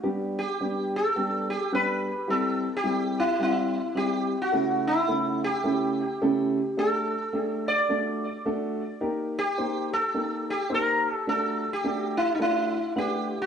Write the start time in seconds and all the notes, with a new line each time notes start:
0.03 G3 B3 D4 G4
0.39 G4
0.60 G3 B3 D4 G4
0.96 A4
1.16 G3 B3 D4 G4
1.50 G4
1.72 G3 B3 D4 G4 B4
2.28 G3 C4 E4 G4 A4
2.77 G4
2.84 G3 C4 E4 G4
3.20 E4
3.40 G3 C4 E4 G4
3.95 G3 C4 E4 G4
4.42 F#4
4.52 C#3 A3 C#4 E4 A4
4.87 E4
5.08 C#3 A3 C#4 E4 A4
5.44 G4
5.64 C#3 A3 C#4 E4 A4
6.22 C#3 A3 C#4 E4 A4
6.77 A3 D4 G4 A4
7.33 A3 D4 G4 A4
7.68 D5
7.89 A3 D4 F#4 A4
8.45 A3 D4 F#4 A4
9.01 A#3 D#4 G4 A#4
9.39 G4
9.58 A#3 D#4 G4 C5
9.93 A4
10.14 A#3 D#4 G4 A4
10.50 G4
10.70 A#3 D#4 G4 C5
10.74 A#4
11.11 A4
11.27 A3 D4 F#4 A4
11.73 G4
11.84 A3 D4 F#4 A4
12.17 E4
12.35 D#4
12.39 A3 D4 E4 F#4 A4
12.96 A3 D4 G4 B4 F#5
13.42 F#4